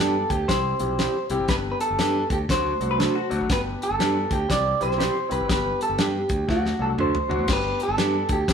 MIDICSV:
0, 0, Header, 1, 7, 480
1, 0, Start_track
1, 0, Key_signature, 1, "major"
1, 0, Tempo, 500000
1, 1432, Time_signature, 4, 2, 24, 8
1, 8190, End_track
2, 0, Start_track
2, 0, Title_t, "Clean electric guitar"
2, 0, Program_c, 0, 27
2, 0, Note_on_c, 0, 69, 81
2, 290, Note_on_c, 0, 67, 83
2, 305, Note_off_c, 0, 69, 0
2, 462, Note_on_c, 0, 72, 92
2, 477, Note_off_c, 0, 67, 0
2, 1208, Note_off_c, 0, 72, 0
2, 1430, Note_on_c, 0, 71, 86
2, 1488, Note_off_c, 0, 71, 0
2, 1647, Note_on_c, 0, 71, 57
2, 1731, Note_off_c, 0, 71, 0
2, 1736, Note_on_c, 0, 69, 84
2, 2229, Note_off_c, 0, 69, 0
2, 2233, Note_on_c, 0, 67, 85
2, 2281, Note_off_c, 0, 67, 0
2, 2408, Note_on_c, 0, 72, 88
2, 3141, Note_off_c, 0, 72, 0
2, 3384, Note_on_c, 0, 71, 96
2, 3461, Note_off_c, 0, 71, 0
2, 3681, Note_on_c, 0, 69, 85
2, 4156, Note_on_c, 0, 67, 83
2, 4161, Note_off_c, 0, 69, 0
2, 4330, Note_on_c, 0, 74, 96
2, 4331, Note_off_c, 0, 67, 0
2, 4629, Note_off_c, 0, 74, 0
2, 4633, Note_on_c, 0, 72, 89
2, 5105, Note_off_c, 0, 72, 0
2, 5109, Note_on_c, 0, 71, 84
2, 5269, Note_off_c, 0, 71, 0
2, 5299, Note_on_c, 0, 71, 94
2, 5590, Note_off_c, 0, 71, 0
2, 5594, Note_on_c, 0, 69, 83
2, 5753, Note_on_c, 0, 67, 74
2, 5769, Note_off_c, 0, 69, 0
2, 6235, Note_off_c, 0, 67, 0
2, 6239, Note_on_c, 0, 66, 70
2, 6546, Note_on_c, 0, 69, 77
2, 6594, Note_off_c, 0, 69, 0
2, 6681, Note_off_c, 0, 66, 0
2, 6725, Note_on_c, 0, 72, 91
2, 7211, Note_off_c, 0, 72, 0
2, 7228, Note_on_c, 0, 71, 106
2, 7515, Note_off_c, 0, 71, 0
2, 7519, Note_on_c, 0, 69, 94
2, 7992, Note_on_c, 0, 67, 91
2, 7996, Note_off_c, 0, 69, 0
2, 8190, Note_off_c, 0, 67, 0
2, 8190, End_track
3, 0, Start_track
3, 0, Title_t, "Hollow-body jazz guitar"
3, 0, Program_c, 1, 26
3, 2792, Note_on_c, 1, 71, 69
3, 2881, Note_off_c, 1, 71, 0
3, 2881, Note_on_c, 1, 69, 75
3, 3019, Note_off_c, 1, 69, 0
3, 3029, Note_on_c, 1, 66, 66
3, 3341, Note_off_c, 1, 66, 0
3, 8190, End_track
4, 0, Start_track
4, 0, Title_t, "Clean electric guitar"
4, 0, Program_c, 2, 27
4, 0, Note_on_c, 2, 62, 81
4, 0, Note_on_c, 2, 67, 75
4, 3, Note_on_c, 2, 71, 81
4, 152, Note_off_c, 2, 62, 0
4, 156, Note_off_c, 2, 67, 0
4, 161, Note_off_c, 2, 71, 0
4, 947, Note_on_c, 2, 64, 63
4, 955, Note_on_c, 2, 67, 77
4, 967, Note_on_c, 2, 72, 80
4, 1114, Note_off_c, 2, 64, 0
4, 1118, Note_off_c, 2, 67, 0
4, 1124, Note_off_c, 2, 72, 0
4, 1910, Note_on_c, 2, 62, 63
4, 1918, Note_on_c, 2, 67, 75
4, 1927, Note_on_c, 2, 71, 78
4, 2076, Note_off_c, 2, 62, 0
4, 2080, Note_off_c, 2, 67, 0
4, 2084, Note_off_c, 2, 71, 0
4, 2867, Note_on_c, 2, 62, 79
4, 2876, Note_on_c, 2, 66, 82
4, 2880, Note_on_c, 2, 69, 83
4, 3035, Note_off_c, 2, 62, 0
4, 3039, Note_off_c, 2, 66, 0
4, 3041, Note_off_c, 2, 69, 0
4, 3833, Note_on_c, 2, 62, 68
4, 3842, Note_on_c, 2, 67, 83
4, 3848, Note_on_c, 2, 71, 91
4, 3998, Note_off_c, 2, 62, 0
4, 4002, Note_off_c, 2, 67, 0
4, 4005, Note_off_c, 2, 71, 0
4, 4781, Note_on_c, 2, 64, 76
4, 4795, Note_on_c, 2, 67, 73
4, 4800, Note_on_c, 2, 72, 85
4, 4951, Note_off_c, 2, 64, 0
4, 4958, Note_off_c, 2, 67, 0
4, 4961, Note_off_c, 2, 72, 0
4, 5747, Note_on_c, 2, 62, 66
4, 5757, Note_on_c, 2, 67, 75
4, 5762, Note_on_c, 2, 71, 66
4, 5914, Note_off_c, 2, 62, 0
4, 5919, Note_off_c, 2, 67, 0
4, 5921, Note_off_c, 2, 71, 0
4, 6707, Note_on_c, 2, 62, 79
4, 6716, Note_on_c, 2, 66, 79
4, 6722, Note_on_c, 2, 69, 81
4, 6873, Note_off_c, 2, 62, 0
4, 6878, Note_off_c, 2, 66, 0
4, 6880, Note_off_c, 2, 69, 0
4, 7658, Note_on_c, 2, 62, 71
4, 7665, Note_on_c, 2, 67, 82
4, 7673, Note_on_c, 2, 71, 75
4, 7827, Note_off_c, 2, 62, 0
4, 7831, Note_off_c, 2, 67, 0
4, 7835, Note_off_c, 2, 71, 0
4, 8190, End_track
5, 0, Start_track
5, 0, Title_t, "Grand piano"
5, 0, Program_c, 3, 0
5, 0, Note_on_c, 3, 55, 59
5, 0, Note_on_c, 3, 59, 59
5, 0, Note_on_c, 3, 62, 52
5, 0, Note_on_c, 3, 67, 69
5, 271, Note_off_c, 3, 55, 0
5, 273, Note_off_c, 3, 62, 0
5, 273, Note_off_c, 3, 67, 0
5, 301, Note_off_c, 3, 59, 0
5, 458, Note_on_c, 3, 55, 59
5, 462, Note_on_c, 3, 64, 61
5, 463, Note_on_c, 3, 60, 59
5, 464, Note_on_c, 3, 67, 72
5, 703, Note_off_c, 3, 55, 0
5, 706, Note_off_c, 3, 60, 0
5, 706, Note_off_c, 3, 64, 0
5, 706, Note_off_c, 3, 67, 0
5, 759, Note_on_c, 3, 55, 65
5, 764, Note_on_c, 3, 60, 56
5, 764, Note_on_c, 3, 64, 55
5, 768, Note_on_c, 3, 67, 69
5, 1088, Note_off_c, 3, 55, 0
5, 1091, Note_off_c, 3, 60, 0
5, 1091, Note_off_c, 3, 64, 0
5, 1093, Note_off_c, 3, 67, 0
5, 1253, Note_on_c, 3, 55, 79
5, 1253, Note_on_c, 3, 60, 79
5, 1254, Note_on_c, 3, 64, 69
5, 1258, Note_on_c, 3, 67, 92
5, 1386, Note_off_c, 3, 55, 0
5, 1386, Note_off_c, 3, 60, 0
5, 1386, Note_off_c, 3, 64, 0
5, 1388, Note_off_c, 3, 67, 0
5, 1439, Note_on_c, 3, 55, 60
5, 1439, Note_on_c, 3, 59, 56
5, 1444, Note_on_c, 3, 62, 57
5, 1445, Note_on_c, 3, 67, 62
5, 2200, Note_off_c, 3, 55, 0
5, 2200, Note_off_c, 3, 59, 0
5, 2202, Note_off_c, 3, 62, 0
5, 2203, Note_off_c, 3, 67, 0
5, 2395, Note_on_c, 3, 54, 68
5, 2400, Note_on_c, 3, 57, 61
5, 2400, Note_on_c, 3, 62, 60
5, 2401, Note_on_c, 3, 66, 76
5, 2633, Note_off_c, 3, 54, 0
5, 2635, Note_off_c, 3, 57, 0
5, 2635, Note_off_c, 3, 62, 0
5, 2636, Note_off_c, 3, 66, 0
5, 2691, Note_on_c, 3, 54, 66
5, 2696, Note_on_c, 3, 57, 58
5, 2698, Note_on_c, 3, 62, 58
5, 2701, Note_on_c, 3, 66, 77
5, 3015, Note_off_c, 3, 54, 0
5, 3018, Note_off_c, 3, 57, 0
5, 3019, Note_off_c, 3, 62, 0
5, 3020, Note_off_c, 3, 66, 0
5, 3167, Note_on_c, 3, 62, 75
5, 3169, Note_on_c, 3, 54, 82
5, 3173, Note_on_c, 3, 57, 70
5, 3176, Note_on_c, 3, 66, 91
5, 3304, Note_off_c, 3, 54, 0
5, 3304, Note_off_c, 3, 62, 0
5, 3307, Note_off_c, 3, 57, 0
5, 3308, Note_off_c, 3, 66, 0
5, 3345, Note_on_c, 3, 55, 66
5, 3355, Note_on_c, 3, 59, 60
5, 3360, Note_on_c, 3, 67, 64
5, 3361, Note_on_c, 3, 62, 53
5, 4112, Note_off_c, 3, 55, 0
5, 4118, Note_off_c, 3, 59, 0
5, 4120, Note_off_c, 3, 62, 0
5, 4120, Note_off_c, 3, 67, 0
5, 4301, Note_on_c, 3, 55, 66
5, 4307, Note_on_c, 3, 60, 56
5, 4307, Note_on_c, 3, 64, 58
5, 4314, Note_on_c, 3, 67, 70
5, 4546, Note_off_c, 3, 55, 0
5, 4549, Note_off_c, 3, 60, 0
5, 4549, Note_off_c, 3, 64, 0
5, 4552, Note_off_c, 3, 67, 0
5, 4606, Note_on_c, 3, 55, 68
5, 4611, Note_on_c, 3, 60, 61
5, 4613, Note_on_c, 3, 64, 59
5, 4613, Note_on_c, 3, 67, 73
5, 4932, Note_off_c, 3, 55, 0
5, 4934, Note_off_c, 3, 60, 0
5, 4936, Note_off_c, 3, 64, 0
5, 4936, Note_off_c, 3, 67, 0
5, 5073, Note_on_c, 3, 60, 61
5, 5075, Note_on_c, 3, 55, 62
5, 5076, Note_on_c, 3, 64, 65
5, 5083, Note_on_c, 3, 67, 73
5, 5216, Note_off_c, 3, 60, 0
5, 5217, Note_off_c, 3, 55, 0
5, 5218, Note_off_c, 3, 64, 0
5, 5221, Note_off_c, 3, 67, 0
5, 5261, Note_on_c, 3, 59, 57
5, 5262, Note_on_c, 3, 62, 51
5, 5264, Note_on_c, 3, 67, 69
5, 5265, Note_on_c, 3, 55, 62
5, 6029, Note_off_c, 3, 59, 0
5, 6030, Note_off_c, 3, 62, 0
5, 6031, Note_off_c, 3, 55, 0
5, 6031, Note_off_c, 3, 67, 0
5, 6214, Note_on_c, 3, 54, 66
5, 6214, Note_on_c, 3, 57, 56
5, 6223, Note_on_c, 3, 62, 62
5, 6223, Note_on_c, 3, 66, 71
5, 6461, Note_off_c, 3, 54, 0
5, 6461, Note_off_c, 3, 57, 0
5, 6466, Note_off_c, 3, 62, 0
5, 6466, Note_off_c, 3, 66, 0
5, 6521, Note_on_c, 3, 54, 68
5, 6523, Note_on_c, 3, 57, 56
5, 6527, Note_on_c, 3, 62, 57
5, 6527, Note_on_c, 3, 66, 68
5, 6848, Note_off_c, 3, 54, 0
5, 6849, Note_off_c, 3, 57, 0
5, 6851, Note_off_c, 3, 62, 0
5, 6851, Note_off_c, 3, 66, 0
5, 6996, Note_on_c, 3, 54, 73
5, 6999, Note_on_c, 3, 57, 67
5, 7002, Note_on_c, 3, 62, 68
5, 7006, Note_on_c, 3, 66, 92
5, 7136, Note_off_c, 3, 54, 0
5, 7138, Note_off_c, 3, 57, 0
5, 7139, Note_off_c, 3, 62, 0
5, 7141, Note_off_c, 3, 66, 0
5, 7180, Note_on_c, 3, 55, 64
5, 7185, Note_on_c, 3, 59, 57
5, 7191, Note_on_c, 3, 62, 56
5, 7191, Note_on_c, 3, 67, 70
5, 7946, Note_off_c, 3, 55, 0
5, 7948, Note_off_c, 3, 59, 0
5, 7951, Note_off_c, 3, 62, 0
5, 7952, Note_off_c, 3, 67, 0
5, 8140, Note_on_c, 3, 60, 68
5, 8146, Note_on_c, 3, 55, 68
5, 8146, Note_on_c, 3, 67, 79
5, 8148, Note_on_c, 3, 64, 61
5, 8190, Note_off_c, 3, 55, 0
5, 8190, Note_off_c, 3, 60, 0
5, 8190, Note_off_c, 3, 64, 0
5, 8190, Note_off_c, 3, 67, 0
5, 8190, End_track
6, 0, Start_track
6, 0, Title_t, "Picked electric bass"
6, 0, Program_c, 4, 34
6, 0, Note_on_c, 4, 43, 80
6, 216, Note_off_c, 4, 43, 0
6, 293, Note_on_c, 4, 38, 80
6, 429, Note_off_c, 4, 38, 0
6, 467, Note_on_c, 4, 36, 87
6, 694, Note_off_c, 4, 36, 0
6, 773, Note_on_c, 4, 35, 84
6, 1021, Note_off_c, 4, 35, 0
6, 1250, Note_on_c, 4, 36, 71
6, 1319, Note_off_c, 4, 36, 0
6, 1342, Note_on_c, 4, 32, 79
6, 1410, Note_off_c, 4, 32, 0
6, 1427, Note_on_c, 4, 31, 85
6, 1654, Note_off_c, 4, 31, 0
6, 1831, Note_on_c, 4, 31, 77
6, 1896, Note_off_c, 4, 31, 0
6, 1915, Note_on_c, 4, 43, 96
6, 2140, Note_off_c, 4, 43, 0
6, 2210, Note_on_c, 4, 38, 86
6, 2347, Note_off_c, 4, 38, 0
6, 2390, Note_on_c, 4, 38, 96
6, 2616, Note_off_c, 4, 38, 0
6, 2695, Note_on_c, 4, 36, 81
6, 2943, Note_off_c, 4, 36, 0
6, 3186, Note_on_c, 4, 38, 74
6, 3249, Note_off_c, 4, 38, 0
6, 3272, Note_on_c, 4, 32, 88
6, 3337, Note_off_c, 4, 32, 0
6, 3362, Note_on_c, 4, 31, 87
6, 3584, Note_off_c, 4, 31, 0
6, 3752, Note_on_c, 4, 31, 81
6, 3817, Note_off_c, 4, 31, 0
6, 3848, Note_on_c, 4, 43, 91
6, 4067, Note_off_c, 4, 43, 0
6, 4139, Note_on_c, 4, 38, 84
6, 4273, Note_off_c, 4, 38, 0
6, 4322, Note_on_c, 4, 36, 90
6, 4543, Note_off_c, 4, 36, 0
6, 4626, Note_on_c, 4, 35, 78
6, 4870, Note_off_c, 4, 35, 0
6, 5104, Note_on_c, 4, 36, 73
6, 5167, Note_off_c, 4, 36, 0
6, 5191, Note_on_c, 4, 32, 85
6, 5256, Note_off_c, 4, 32, 0
6, 5276, Note_on_c, 4, 31, 92
6, 5499, Note_off_c, 4, 31, 0
6, 5659, Note_on_c, 4, 31, 76
6, 5729, Note_off_c, 4, 31, 0
6, 5748, Note_on_c, 4, 43, 88
6, 5974, Note_off_c, 4, 43, 0
6, 6046, Note_on_c, 4, 38, 78
6, 6185, Note_off_c, 4, 38, 0
6, 6225, Note_on_c, 4, 38, 83
6, 6452, Note_off_c, 4, 38, 0
6, 6519, Note_on_c, 4, 36, 81
6, 6660, Note_off_c, 4, 36, 0
6, 6701, Note_on_c, 4, 38, 78
6, 6817, Note_off_c, 4, 38, 0
6, 7003, Note_on_c, 4, 38, 72
6, 7074, Note_off_c, 4, 38, 0
6, 7091, Note_on_c, 4, 40, 69
6, 7162, Note_off_c, 4, 40, 0
6, 7185, Note_on_c, 4, 31, 96
6, 7411, Note_off_c, 4, 31, 0
6, 7571, Note_on_c, 4, 31, 80
6, 7642, Note_off_c, 4, 31, 0
6, 7660, Note_on_c, 4, 43, 92
6, 7887, Note_off_c, 4, 43, 0
6, 7961, Note_on_c, 4, 38, 79
6, 8100, Note_off_c, 4, 38, 0
6, 8141, Note_on_c, 4, 36, 94
6, 8190, Note_off_c, 4, 36, 0
6, 8190, End_track
7, 0, Start_track
7, 0, Title_t, "Drums"
7, 289, Note_on_c, 9, 36, 84
7, 291, Note_on_c, 9, 42, 59
7, 385, Note_off_c, 9, 36, 0
7, 387, Note_off_c, 9, 42, 0
7, 468, Note_on_c, 9, 36, 77
7, 471, Note_on_c, 9, 42, 90
7, 473, Note_on_c, 9, 38, 99
7, 564, Note_off_c, 9, 36, 0
7, 567, Note_off_c, 9, 42, 0
7, 569, Note_off_c, 9, 38, 0
7, 763, Note_on_c, 9, 42, 54
7, 859, Note_off_c, 9, 42, 0
7, 948, Note_on_c, 9, 42, 72
7, 950, Note_on_c, 9, 38, 107
7, 1044, Note_off_c, 9, 42, 0
7, 1046, Note_off_c, 9, 38, 0
7, 1244, Note_on_c, 9, 42, 56
7, 1340, Note_off_c, 9, 42, 0
7, 1423, Note_on_c, 9, 42, 84
7, 1427, Note_on_c, 9, 36, 108
7, 1427, Note_on_c, 9, 38, 98
7, 1519, Note_off_c, 9, 42, 0
7, 1523, Note_off_c, 9, 36, 0
7, 1523, Note_off_c, 9, 38, 0
7, 1732, Note_on_c, 9, 42, 64
7, 1828, Note_off_c, 9, 42, 0
7, 1907, Note_on_c, 9, 42, 73
7, 1909, Note_on_c, 9, 38, 98
7, 2003, Note_off_c, 9, 42, 0
7, 2005, Note_off_c, 9, 38, 0
7, 2210, Note_on_c, 9, 36, 88
7, 2210, Note_on_c, 9, 42, 56
7, 2306, Note_off_c, 9, 36, 0
7, 2306, Note_off_c, 9, 42, 0
7, 2392, Note_on_c, 9, 36, 79
7, 2397, Note_on_c, 9, 42, 93
7, 2400, Note_on_c, 9, 38, 101
7, 2488, Note_off_c, 9, 36, 0
7, 2493, Note_off_c, 9, 42, 0
7, 2496, Note_off_c, 9, 38, 0
7, 2696, Note_on_c, 9, 42, 55
7, 2792, Note_off_c, 9, 42, 0
7, 2878, Note_on_c, 9, 42, 75
7, 2881, Note_on_c, 9, 38, 100
7, 2974, Note_off_c, 9, 42, 0
7, 2977, Note_off_c, 9, 38, 0
7, 3178, Note_on_c, 9, 42, 60
7, 3274, Note_off_c, 9, 42, 0
7, 3355, Note_on_c, 9, 42, 84
7, 3357, Note_on_c, 9, 36, 113
7, 3359, Note_on_c, 9, 38, 104
7, 3451, Note_off_c, 9, 42, 0
7, 3453, Note_off_c, 9, 36, 0
7, 3455, Note_off_c, 9, 38, 0
7, 3668, Note_on_c, 9, 42, 64
7, 3764, Note_off_c, 9, 42, 0
7, 3840, Note_on_c, 9, 42, 78
7, 3842, Note_on_c, 9, 38, 99
7, 3936, Note_off_c, 9, 42, 0
7, 3938, Note_off_c, 9, 38, 0
7, 4135, Note_on_c, 9, 42, 58
7, 4136, Note_on_c, 9, 36, 92
7, 4231, Note_off_c, 9, 42, 0
7, 4232, Note_off_c, 9, 36, 0
7, 4317, Note_on_c, 9, 36, 80
7, 4322, Note_on_c, 9, 42, 89
7, 4324, Note_on_c, 9, 38, 94
7, 4413, Note_off_c, 9, 36, 0
7, 4418, Note_off_c, 9, 42, 0
7, 4420, Note_off_c, 9, 38, 0
7, 4617, Note_on_c, 9, 42, 55
7, 4713, Note_off_c, 9, 42, 0
7, 4714, Note_on_c, 9, 38, 31
7, 4802, Note_on_c, 9, 42, 78
7, 4805, Note_off_c, 9, 38, 0
7, 4805, Note_on_c, 9, 38, 105
7, 4898, Note_off_c, 9, 42, 0
7, 4901, Note_off_c, 9, 38, 0
7, 5096, Note_on_c, 9, 42, 59
7, 5192, Note_off_c, 9, 42, 0
7, 5275, Note_on_c, 9, 36, 105
7, 5275, Note_on_c, 9, 42, 88
7, 5279, Note_on_c, 9, 38, 100
7, 5371, Note_off_c, 9, 36, 0
7, 5371, Note_off_c, 9, 42, 0
7, 5375, Note_off_c, 9, 38, 0
7, 5577, Note_on_c, 9, 42, 61
7, 5673, Note_off_c, 9, 42, 0
7, 5745, Note_on_c, 9, 42, 69
7, 5747, Note_on_c, 9, 38, 106
7, 5841, Note_off_c, 9, 42, 0
7, 5843, Note_off_c, 9, 38, 0
7, 6040, Note_on_c, 9, 42, 60
7, 6046, Note_on_c, 9, 36, 88
7, 6136, Note_off_c, 9, 42, 0
7, 6142, Note_off_c, 9, 36, 0
7, 6227, Note_on_c, 9, 36, 78
7, 6231, Note_on_c, 9, 38, 49
7, 6323, Note_off_c, 9, 36, 0
7, 6327, Note_off_c, 9, 38, 0
7, 6391, Note_on_c, 9, 38, 54
7, 6487, Note_off_c, 9, 38, 0
7, 6706, Note_on_c, 9, 45, 62
7, 6802, Note_off_c, 9, 45, 0
7, 6861, Note_on_c, 9, 43, 87
7, 6957, Note_off_c, 9, 43, 0
7, 7018, Note_on_c, 9, 43, 77
7, 7114, Note_off_c, 9, 43, 0
7, 7177, Note_on_c, 9, 49, 94
7, 7181, Note_on_c, 9, 38, 97
7, 7184, Note_on_c, 9, 36, 111
7, 7273, Note_off_c, 9, 49, 0
7, 7277, Note_off_c, 9, 38, 0
7, 7280, Note_off_c, 9, 36, 0
7, 7486, Note_on_c, 9, 42, 65
7, 7582, Note_off_c, 9, 42, 0
7, 7661, Note_on_c, 9, 42, 74
7, 7663, Note_on_c, 9, 38, 105
7, 7757, Note_off_c, 9, 42, 0
7, 7759, Note_off_c, 9, 38, 0
7, 7956, Note_on_c, 9, 42, 59
7, 7961, Note_on_c, 9, 36, 96
7, 8052, Note_off_c, 9, 42, 0
7, 8057, Note_off_c, 9, 36, 0
7, 8143, Note_on_c, 9, 36, 89
7, 8145, Note_on_c, 9, 42, 99
7, 8148, Note_on_c, 9, 38, 103
7, 8190, Note_off_c, 9, 36, 0
7, 8190, Note_off_c, 9, 38, 0
7, 8190, Note_off_c, 9, 42, 0
7, 8190, End_track
0, 0, End_of_file